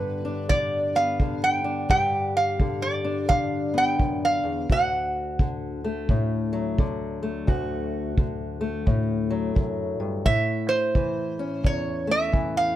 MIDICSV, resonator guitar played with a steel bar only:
0, 0, Header, 1, 2, 480
1, 0, Start_track
1, 0, Key_signature, 2, "major"
1, 0, Tempo, 696056
1, 1306, Time_signature, 4, 2, 24, 8
1, 8798, End_track
2, 0, Start_track
2, 0, Title_t, "Resonator guitar played with a steel bar"
2, 0, Program_c, 0, 25
2, 0, Note_on_c, 0, 71, 87
2, 338, Note_off_c, 0, 71, 0
2, 340, Note_on_c, 0, 74, 92
2, 662, Note_on_c, 0, 77, 93
2, 672, Note_off_c, 0, 74, 0
2, 989, Note_off_c, 0, 77, 0
2, 991, Note_on_c, 0, 79, 89
2, 1306, Note_off_c, 0, 79, 0
2, 1314, Note_on_c, 0, 79, 107
2, 1630, Note_off_c, 0, 79, 0
2, 1632, Note_on_c, 0, 77, 89
2, 1947, Note_on_c, 0, 74, 83
2, 1961, Note_off_c, 0, 77, 0
2, 2267, Note_on_c, 0, 77, 90
2, 2278, Note_off_c, 0, 74, 0
2, 2599, Note_off_c, 0, 77, 0
2, 2605, Note_on_c, 0, 79, 90
2, 2927, Note_off_c, 0, 79, 0
2, 2930, Note_on_c, 0, 77, 88
2, 3251, Note_off_c, 0, 77, 0
2, 3257, Note_on_c, 0, 78, 89
2, 3998, Note_off_c, 0, 78, 0
2, 7073, Note_on_c, 0, 76, 104
2, 7370, Note_on_c, 0, 72, 92
2, 7379, Note_off_c, 0, 76, 0
2, 8041, Note_off_c, 0, 72, 0
2, 8043, Note_on_c, 0, 73, 89
2, 8354, Note_on_c, 0, 76, 86
2, 8362, Note_off_c, 0, 73, 0
2, 8668, Note_off_c, 0, 76, 0
2, 8670, Note_on_c, 0, 77, 95
2, 8798, Note_off_c, 0, 77, 0
2, 8798, End_track
0, 0, End_of_file